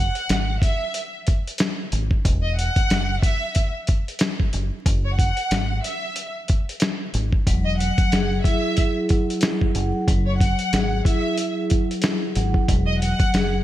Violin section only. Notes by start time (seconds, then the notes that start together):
Already playing: F#5
0.63 E5
2.43 D#5
2.58 F#5
3.23 E5
5.05 C#5
5.16 F#5
5.83 E5
7.64 D#5
7.79 F#5
8.44 E5
10.26 C#5
10.38 F#5
11.06 E5
12.86 D#5
13.01 F#5